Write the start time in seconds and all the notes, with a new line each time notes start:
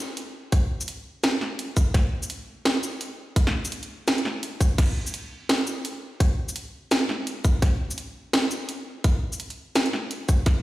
0.17 closed hi-hat
0.52 kick, closed hi-hat
0.81 shaker
0.88 closed hi-hat
1.24 snare, closed hi-hat, shaker
1.41 snare
1.59 closed hi-hat
1.77 kick, shaker
1.94 kick, snare, closed hi-hat
2.23 shaker
2.30 closed hi-hat
2.65 snare, closed hi-hat
2.83 shaker
3.01 closed hi-hat
3.36 kick, closed hi-hat
3.47 snare
3.65 closed hi-hat, shaker
3.72 closed hi-hat
3.83 closed hi-hat
4.08 snare, closed hi-hat, shaker
4.18 closed hi-hat
4.25 snare
4.43 closed hi-hat
4.61 kick, shaker
4.78 kick, snare, closed hi-hat, crash
5.07 shaker
5.14 closed hi-hat
5.49 snare, closed hi-hat
5.67 shaker
5.85 closed hi-hat
6.20 kick, closed hi-hat
6.49 shaker
6.56 closed hi-hat
6.91 snare, closed hi-hat, shaker
7.09 snare
7.27 closed hi-hat
7.45 kick, shaker
7.62 kick, snare, closed hi-hat
7.91 shaker
7.98 closed hi-hat
8.33 snare, closed hi-hat
8.51 shaker
8.69 closed hi-hat
9.04 kick, closed hi-hat
9.33 shaker
9.40 closed hi-hat
9.50 closed hi-hat
9.76 snare, closed hi-hat, shaker
9.86 closed hi-hat
9.93 snare
10.11 closed hi-hat
10.29 kick, shaker
10.46 kick, snare, closed hi-hat